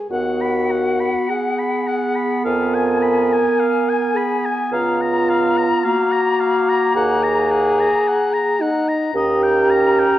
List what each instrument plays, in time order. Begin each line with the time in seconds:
Already playing: french horn G#4
0.10 bassoon D#2, clarinet B3, french horn F#4, flute F#5, oboe F#5
0.41 oboe B5
0.71 oboe F#5
1.00 oboe B5
1.30 french horn G#4, oboe F#5
1.59 oboe B5
1.87 oboe F#5
2.16 oboe B5
2.45 bassoon F2, french horn A#4, oboe F5, flute G#5
2.74 oboe G#5
3.02 oboe B5
3.33 oboe G#5
3.60 oboe F5
3.89 oboe G#5
4.15 french horn G#4, oboe B5
4.45 oboe G#5
4.72 bassoon C#2, french horn F4, oboe F5, flute A#5
5.01 oboe A#5
5.29 oboe F5
5.57 oboe A#5
5.84 clarinet A#3, french horn F#4, oboe F5
6.12 oboe A#5
6.40 oboe F5
6.69 oboe A#5
6.96 bassoon D#2, french horn G#4, oboe F#5
7.23 oboe A#5
7.51 oboe F#5
7.80 oboe A#5
8.08 oboe F#5
8.34 oboe A#5
8.61 french horn D#4, oboe F#5
8.88 oboe A#5
9.14 bassoon D#2, clarinet C#4, french horn G4, oboe D#5, flute A#5
9.43 oboe G5
9.70 oboe A#5
9.99 oboe G5